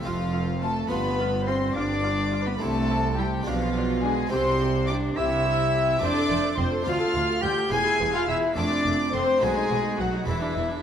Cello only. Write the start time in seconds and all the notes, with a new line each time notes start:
0.04 F3
0.61 A3
0.89 B3
1.47 C4
1.74 D4
2.47 B3
2.61 A3
3.18 G3
3.46 F3
4.05 G#3
4.31 C4
4.88 D4
5.17 E4
6.02 D4
6.58 C4
6.85 F4
7.42 G4
7.71 G#4
8.14 F4
8.29 E4
8.56 D4
9.14 C4
9.42 G#3
9.99 F#3
10.27 E3